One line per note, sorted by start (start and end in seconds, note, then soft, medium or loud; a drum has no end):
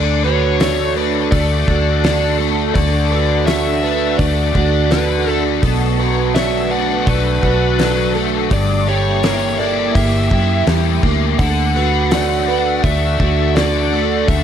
0.00 1.28 D2 loud
0.00 0.24 D3 medium
0.00 1.68 D3 medium
0.00 5.59 D4 medium
0.00 0.24 A4 medium
0.00 5.59 A4 medium
0.00 0.24 D5 loud
0.00 8.47 F#5 medium
0.00 5.59 A5 medium
0.24 2.02 D3 medium
0.24 1.68 F#4 medium
0.24 0.61 B4 medium
0.24 0.92 C#5 medium
0.60 1.32 A3 medium
0.60 1.33 D4 medium
0.60 0.96 C#5 medium
0.60 snare medium
0.60 open hi-hat medium
0.96 2.40 A3 medium
0.96 1.68 D4 medium
0.96 1.33 B4 medium
1.32 1.65 D2 loud
1.32 2.39 A3 medium
1.32 2.04 D4 medium
1.32 2.04 A4 medium
1.32 2.36 D5 loud
1.32 kick loud
1.32 open hi-hat soft
1.68 2.72 D2 medium
1.68 3.83 D4 medium
1.68 4.55 F#4 medium
1.68 3.12 F#4 medium
1.68 kick medium
1.68 snare soft
2.04 2.73 D3 medium
2.04 3.48 D4 medium
2.04 2.39 A4 medium
2.04 snare loud
2.04 open hi-hat medium
2.39 3.47 A3 medium
2.39 3.83 A3 medium
2.39 2.75 A4 medium
2.74 4.15 D2 loud
2.74 3.10 D3 medium
2.74 4.55 D3 medium
2.74 3.11 A4 medium
2.74 3.43 D5 medium
2.74 kick loud
2.74 open hi-hat medium
3.11 4.90 D3 medium
3.11 4.54 F#4 medium
3.11 3.47 B4 medium
3.47 4.17 A3 medium
3.47 4.19 D4 medium
3.47 3.83 C#5 medium
3.47 4.18 E5 loud
3.47 snare loud
3.47 open hi-hat medium
3.83 5.25 A3 medium
3.83 4.53 D4 medium
3.83 4.18 B4 medium
4.18 4.52 D2 loud
4.18 5.26 A3 medium
4.18 4.90 D4 medium
4.18 4.55 A4 medium
4.18 4.93 D5 medium
4.18 kick loud
4.18 open hi-hat medium
4.54 5.59 D2 medium
4.54 6.71 D4 medium
4.54 4.91 F#4 medium
4.54 5.63 F#4 medium
4.54 kick medium
4.91 5.63 D3 medium
4.91 6.34 D4 medium
4.91 5.26 A4 medium
4.91 5.30 B4 medium
4.91 snare loud
4.91 open hi-hat soft
5.27 5.63 A3 medium
5.27 5.62 A4 medium
5.27 5.41 A4 medium
5.62 7.03 B1 loud
5.62 7.42 B2 medium
5.62 7.43 B2 medium
5.62 5.99 A4 medium
5.62 8.49 B4 medium
5.62 8.49 A5 medium
5.62 kick loud
5.62 open hi-hat medium
5.97 7.78 F#3 medium
5.97 7.41 F#4 medium
5.97 6.35 B4 medium
6.34 7.06 A3 medium
6.34 7.06 D4 medium
6.34 6.71 C#5 medium
6.34 6.72 E5 loud
6.34 snare loud
6.34 open hi-hat soft
6.70 8.13 A3 medium
6.70 7.43 D4 medium
6.70 7.07 B4 medium
6.70 7.08 F#5 medium
7.06 7.39 B1 loud
7.06 8.15 A3 medium
7.06 7.78 D4 medium
7.06 7.43 A4 medium
7.06 8.11 B4 medium
7.06 kick loud
7.06 open hi-hat soft
7.42 8.47 B1 medium
7.42 9.59 D4 medium
7.42 8.51 F#4 medium
7.42 7.79 F#4 medium
7.42 kick medium
7.78 8.51 F#3 medium
7.78 9.23 D4 medium
7.78 8.14 A4 medium
7.78 snare medium
7.78 open hi-hat medium
8.14 8.50 A3 medium
8.14 8.51 A3 medium
8.14 8.50 A4 medium
8.50 9.91 G1 loud
8.50 10.31 G2 medium
8.50 10.32 G2 medium
8.50 11.38 A#3 medium
8.50 8.87 G4 medium
8.50 8.88 D5 medium
8.50 11.37 E5 medium
8.50 11.37 G5 medium
8.50 kick loud
8.50 open hi-hat medium
8.87 10.67 G3 medium
8.87 10.30 G4 medium
8.87 9.23 A4 medium
8.87 9.59 C#5 medium
9.23 9.95 A#3 medium
9.23 9.95 E4 medium
9.23 9.59 A#4 medium
9.23 snare loud
9.23 open hi-hat medium
9.59 11.03 A#3 medium
9.59 10.31 E4 medium
9.59 9.95 A4 medium
9.59 9.96 D5 medium
9.95 10.28 G1 loud
9.95 11.04 A#3 medium
9.95 10.66 E4 medium
9.95 10.31 G4 medium
9.95 10.63 E5 loud
9.95 kick loud
9.95 open hi-hat medium
10.31 10.64 F#2 medium
10.31 10.67 E4 medium
10.31 11.40 E4 medium
10.31 11.40 G4 medium
10.31 kick medium
10.67 11.00 E2 medium
10.67 11.39 G3 medium
10.67 11.40 E4 medium
10.67 11.02 G4 medium
10.67 snare loud
10.67 open hi-hat soft
11.03 11.36 D2 medium
11.03 11.40 A#3 medium
11.03 11.39 G4 medium
11.03 kick medium
11.39 12.80 D2 loud
11.39 11.75 D3 medium
11.39 13.20 D3 medium
11.39 14.44 D4 medium
11.39 11.76 A4 medium
11.39 14.44 A4 medium
11.39 12.83 F#5 loud
11.39 14.44 F#5 medium
11.39 kick loud
11.39 open hi-hat medium
11.76 13.54 D3 medium
11.76 13.19 F#4 medium
11.76 12.11 B4 medium
12.11 12.84 A3 medium
12.11 12.83 D4 medium
12.11 12.48 C#5 medium
12.11 snare loud
12.11 open hi-hat medium
12.48 13.92 A3 medium
12.48 13.20 D4 medium
12.48 12.84 B4 medium
12.84 13.17 D2 loud
12.84 13.92 A3 medium
12.84 13.56 D4 medium
12.84 13.57 A4 medium
12.84 13.58 E5 medium
12.84 kick loud
12.84 open hi-hat soft
13.20 14.24 D2 medium
13.20 14.44 D4 medium
13.20 14.44 F#4 medium
13.20 kick medium
13.55 14.27 D3 medium
13.55 14.44 D4 medium
13.55 13.93 A4 medium
13.55 14.30 D5 medium
13.55 snare loud
13.55 open hi-hat soft
13.92 14.44 A3 medium
13.92 14.29 A4 medium
14.28 14.44 D2 loud
14.28 14.44 D3 medium
14.28 14.44 A4 medium
14.28 14.44 E5 medium
14.28 kick loud
14.28 open hi-hat medium